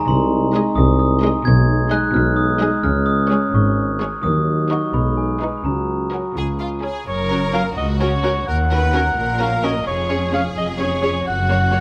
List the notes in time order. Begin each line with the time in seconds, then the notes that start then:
Already playing: G#3 D#4
0.08 C2 C3 C6
0.54 G#3 G#4 D#5
0.76 C2 C3 D#6
0.99 D#6
1.22 G#3 G#4 D#5
1.45 B1 B2 G#3 D#4 G#6
1.91 G#3 G#4 D#5 F#6
2.14 B1 B2 F6
2.36 D#6
2.60 G#3 G#4 D#5
2.83 C#2 C#3 C#4 F6
3.06 D#6
3.31 G#3 G#4 C#5
3.53 G#1 G#2 C#6
4.00 G#3 G#4 C#5
4.23 D#2 D#3 F#3 D#4 D#6
4.70 D#4 F#4 A#4 C#6
4.93 B1 B2 G#3 B5
5.17 G#5
5.41 D#4 G#4 B4
5.57 B5
5.64 C#2 C#3 F#3 F#4 A#5
6.11 C#4 F#4 A#4
6.35 C#2 C#3 G#3 F4 G#4
6.60 F4
6.82 C#4 G#4
7.07 F#1 F#2 A#4 C#5
7.29 C#4 F#4 A#4
7.53 C#4 F#4 A#4 F5
7.76 C#2 F#4 D#5
8.00 C#4 F#4 A#4 C#5
8.23 C#4 F#4 A#4
8.47 D#2 A#4 F#5
8.71 C#4 F#4 A#4 B4
8.93 C#4 F#4 A#4
9.16 A#1 A#2 A#4
9.39 C#4 F#4 A#4 F5
9.62 C#4 F#4 A#4 D#5
9.86 F1 F2 G#4 C#5
10.10 C#4 G#4 C#5
10.32 C#4 G#4 C#5 F5
10.56 F1 F2 D#5
10.79 C#4 G#4 C#5
11.02 C#4 G#4 C#5
11.25 F#1 F#2 F#4 F#5
11.49 A#3 F#4 C#5
11.71 A#3 F#4 C#5